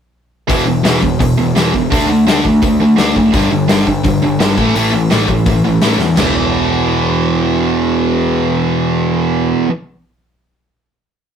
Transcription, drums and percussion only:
0.49 kick, open hi-hat
0.85 snare, open hi-hat
1.03 kick
1.20 kick, open hi-hat
1.56 snare, open hi-hat
1.74 kick
1.92 kick, open hi-hat
2.28 snare, open hi-hat
2.45 kick
2.62 kick, open hi-hat
2.98 snare, open hi-hat
3.16 kick
3.33 kick, open hi-hat
3.69 snare, open hi-hat
3.87 kick
4.05 kick, open hi-hat
4.40 snare, open hi-hat
4.58 kick
4.76 open hi-hat
5.11 snare, open hi-hat
5.28 kick
5.46 kick, open hi-hat
5.81 snare, open hi-hat
5.99 snare
6.17 snare, floor tom, china

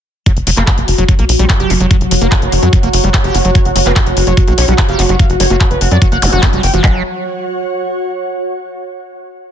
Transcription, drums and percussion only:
0.26 kick, closed hi-hat
0.37 closed hi-hat
0.47 open hi-hat
0.57 clap, closed hi-hat
0.67 kick, clap, closed hi-hat
0.78 closed hi-hat
0.88 open hi-hat
0.98 closed hi-hat
1.09 kick, closed hi-hat
1.19 closed hi-hat
1.29 open hi-hat
1.39 closed hi-hat
1.50 kick, clap, closed hi-hat
1.60 closed hi-hat
1.70 open hi-hat
1.80 closed hi-hat
1.91 kick, closed hi-hat
2.01 closed hi-hat
2.11 open hi-hat
2.22 closed hi-hat
2.32 kick, clap, closed hi-hat
2.42 closed hi-hat
2.52 open hi-hat
2.63 closed hi-hat
2.73 kick, closed hi-hat
2.83 closed hi-hat
2.93 open hi-hat
3.04 closed hi-hat
3.14 kick, clap, closed hi-hat
3.24 closed hi-hat
3.35 open hi-hat
3.45 closed hi-hat
3.55 kick, closed hi-hat
3.65 closed hi-hat
3.76 open hi-hat
3.86 clap, closed hi-hat
3.96 kick, clap, closed hi-hat
4.06 closed hi-hat
4.17 open hi-hat
4.27 closed hi-hat
4.37 kick, closed hi-hat
4.48 closed hi-hat
4.58 open hi-hat
4.68 closed hi-hat
4.78 kick, clap, closed hi-hat
4.89 closed hi-hat
4.99 open hi-hat
5.09 closed hi-hat
5.19 kick, closed hi-hat
5.30 closed hi-hat
5.40 open hi-hat
5.50 closed hi-hat
5.61 kick, clap, closed hi-hat
5.71 closed hi-hat
5.81 open hi-hat
5.91 closed hi-hat
6.02 kick, closed hi-hat
6.12 closed hi-hat
6.22 open hi-hat
6.32 closed hi-hat
6.43 kick, clap, closed hi-hat
6.53 closed hi-hat
6.63 open hi-hat
6.74 closed hi-hat
6.84 kick, clap

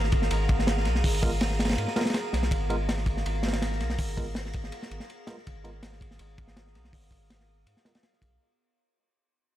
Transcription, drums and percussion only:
0.04 snare
0.12 kick, ride
0.22 snare
0.31 ride
0.49 kick, ride
0.59 snare
0.67 snare, ride
0.78 snare
0.85 snare, ride
0.95 snare
1.04 kick, open hi-hat
1.14 ride
1.23 kick, ride
1.41 snare, ride
1.51 snare
1.59 snare, ride
1.65 snare, ride
1.69 snare, ride
1.73 snare, ride
1.78 ride
1.88 snare
1.96 snare, ride
2.01 snare, ride
2.06 snare, ride
2.10 snare, ride
2.14 snare, ride
2.33 snare, ride
2.43 snare
2.51 kick, ride
2.70 ride
2.89 snare, ride
2.98 snare
3.06 kick, ride
3.17 snare
3.26 ride
3.43 snare, ride
3.48 snare, ride
3.53 snare, ride
3.62 snare, ride
3.72 snare
3.80 snare, ride
3.90 snare
3.98 kick, open hi-hat
4.08 ride
4.17 kick, ride
4.35 snare, ride
4.46 snare
4.53 kick, ride
4.64 snare
4.72 ride
4.83 snare
4.91 ride
5.00 snare
5.10 ride
5.27 snare, ride
5.38 snare
5.47 kick, ride
5.64 ride
5.83 snare, ride
5.93 snare
6.01 kick, ride
6.11 snare
6.19 ride
6.38 kick, ride
6.48 snare
6.57 snare, ride
6.67 snare
6.75 snare, ride
6.85 snare
6.93 kick, open hi-hat
7.04 ride
7.11 kick, ride
7.30 snare, ride
7.40 snare
7.67 ride
7.77 snare
7.85 snare, ride
7.95 snare, ride
8.03 snare, ride
8.13 snare
8.22 kick, ride

